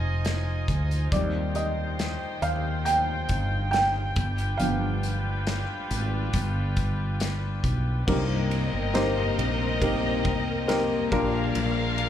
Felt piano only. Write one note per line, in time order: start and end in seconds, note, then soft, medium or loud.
0.00 0.64 C5 medium
0.00 1.13 F5 medium
1.12 2.39 G3 medium
1.12 2.39 C4 soft
1.12 2.39 D#4 medium
1.12 1.57 D5 medium
1.56 2.45 D#5 medium
2.42 2.52 F5 medium
2.85 3.68 G5 medium
3.71 4.61 G5 medium
4.57 8.03 F3 medium
4.57 8.03 B3 soft
4.57 8.04 D4 medium
4.57 7.15 F5 medium
8.07 9.34 G2 medium
8.07 8.90 A#3 medium
8.07 8.90 C4 medium
8.07 8.90 D#4 medium
8.07 8.90 G4 medium
8.07 8.90 A#4 medium
8.94 9.77 A#3 medium
8.94 9.77 C4 medium
8.94 9.77 D#4 medium
8.94 9.77 G4 medium
8.94 9.77 C5 loud
9.81 10.64 A#3 medium
9.81 10.64 C4 medium
9.81 10.64 D#4 medium
9.81 10.64 G4 medium
9.81 10.64 A#4 medium
10.68 11.10 A#3 medium
10.68 11.11 C4 medium
10.68 11.12 D#4 medium
10.68 11.11 G4 medium
10.68 11.11 A#4 medium
11.12 12.09 A#2 medium
11.12 12.09 A#3 loud
11.12 12.09 D4 medium
11.12 12.09 F4 medium
11.12 12.09 G4 medium
11.12 12.09 A#4 loud